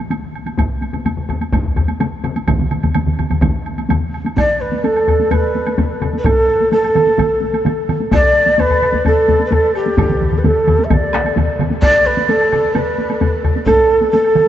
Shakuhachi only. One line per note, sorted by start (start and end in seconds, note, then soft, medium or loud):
4.38 4.62 D5 loud
4.61 4.86 B4 medium
4.84 5.32 A4 medium
5.31 6.01 B4 medium
6.18 6.26 B4 medium
6.24 6.72 A4 loud
6.72 7.62 A4 medium
8.13 8.61 D5 loud
8.60 9.06 B4 loud
9.07 9.44 A4 medium
9.46 9.54 B4 medium
9.52 9.74 A4 medium
9.75 10.40 G4 medium
10.38 10.47 B4 medium
10.45 10.86 A4 medium
10.84 10.93 E5 medium
10.91 11.60 D5 medium
11.82 12.08 D5 loud
12.06 12.31 B4 medium
12.29 12.76 A4 medium
12.74 13.43 B4 medium
13.66 14.09 A4 loud
14.11 14.48 A4 medium